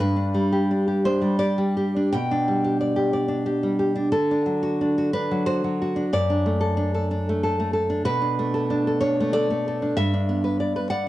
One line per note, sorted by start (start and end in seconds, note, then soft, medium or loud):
0.00 2.08 G2 medium
0.00 1.00 B4 loud
0.16 0.70 D4 medium
0.34 1.20 G3 medium
0.52 0.86 G4 medium
0.71 1.04 D4 medium
0.88 1.38 G4 medium
1.05 1.95 D4 medium
1.05 1.38 C5 loud
1.22 1.57 G3 medium
1.39 1.76 G4 medium
1.39 2.10 D5 loud
1.58 2.14 G3 medium
1.77 2.14 G4 medium
1.96 2.14 D4 medium
2.13 4.12 B2 medium
2.13 2.80 G5 loud
2.31 3.27 D4 medium
2.48 3.49 G3 medium
2.64 2.95 G4 medium
2.81 3.12 D5 medium
2.96 3.45 G4 medium
3.13 4.15 D5 medium
3.28 3.94 D4 medium
3.46 3.78 G4 medium
3.63 4.15 G3 medium
3.79 4.11 G4 medium
3.96 4.11 D4 medium
4.12 6.04 D3 medium
4.12 5.09 A4 loud
4.31 4.80 D4 medium
4.46 5.30 F#3 medium
4.63 4.97 F#4 medium
4.81 5.13 D4 medium
4.98 5.13 F#4 medium
5.13 5.95 D4 medium
5.13 5.44 B4 loud
5.31 5.63 F#3 medium
5.46 5.80 F#4 medium
5.46 6.07 C5 loud
5.64 6.11 F#3 medium
5.82 6.12 F#4 medium
5.96 6.11 D4 medium
6.13 8.02 F#2 medium
6.13 7.70 D5 loud
6.30 6.76 D4 medium
6.46 7.28 A3 medium
6.61 6.93 A4 medium
6.77 7.10 D4 medium
6.95 7.42 A4 medium
7.11 7.89 D4 medium
7.29 7.58 A3 medium
7.43 7.72 A4 medium
7.60 8.06 A3 medium
7.73 8.05 A4 medium
7.90 8.05 D4 medium
8.05 9.92 B2 medium
8.05 8.98 B4 loud
8.22 8.69 D4 medium
8.39 9.19 A3 medium
8.54 8.86 A4 medium
8.70 9.01 D4 medium
8.87 9.32 A4 medium
9.01 9.81 D4 medium
9.01 9.31 C#5 loud
9.20 9.49 A3 medium
9.33 9.67 A4 medium
9.33 9.93 D5 loud
9.50 9.97 A3 medium
9.68 9.98 A4 medium
9.82 9.97 D4 medium
9.97 11.08 G2 medium
9.97 10.88 E5 loud
10.14 11.06 D4 medium
10.29 10.90 B3 medium
10.44 10.60 B4 medium
10.60 10.76 D5 medium
10.76 10.90 B4 medium
10.90 11.08 D5 medium
10.90 11.08 F#5 loud